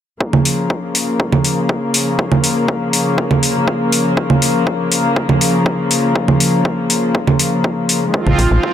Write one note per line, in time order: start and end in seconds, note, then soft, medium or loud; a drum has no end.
0.20 8.10 C#3 medium
0.20 8.73 F3 medium
0.20 8.10 A#3 medium
0.20 8.73 A#4 medium
0.20 kick loud
0.33 low conga medium
0.38 8.73 F5 medium
0.44 8.14 C#6 medium
0.44 open hi-hat medium
0.70 kick loud
0.95 open hi-hat medium
1.20 kick loud
1.32 low conga medium
1.45 open hi-hat medium
1.69 kick loud
1.94 open hi-hat medium
2.19 kick loud
2.32 low conga medium
2.44 open hi-hat loud
2.68 kick loud
2.93 open hi-hat loud
3.18 kick loud
3.31 low conga medium
3.43 open hi-hat loud
3.68 kick loud
3.92 open hi-hat loud
4.17 kick loud
4.30 low conga medium
4.42 open hi-hat loud
4.67 kick loud
4.92 open hi-hat loud
5.16 kick loud
5.29 low conga medium
5.41 open hi-hat loud
5.66 kick loud
5.91 open hi-hat loud
6.16 kick loud
6.28 low conga medium
6.40 open hi-hat loud
6.65 kick loud
6.90 open hi-hat loud
7.15 kick loud
7.27 low conga medium
7.39 open hi-hat loud
7.64 kick loud
7.89 open hi-hat loud
8.14 8.73 D#3 medium
8.14 8.48 F3 medium
8.14 8.73 G#3 medium
8.14 8.48 C4 medium
8.14 8.48 F4 loud
8.14 8.73 F4 medium
8.14 kick loud
8.27 8.35 A#1 medium
8.27 low conga medium
8.39 8.47 A#1 loud
8.39 8.73 C5 medium
8.39 open hi-hat loud
8.51 8.60 A#1 medium
8.51 8.73 F3 medium
8.51 8.73 C4 medium
8.51 8.73 F4 loud
8.63 kick loud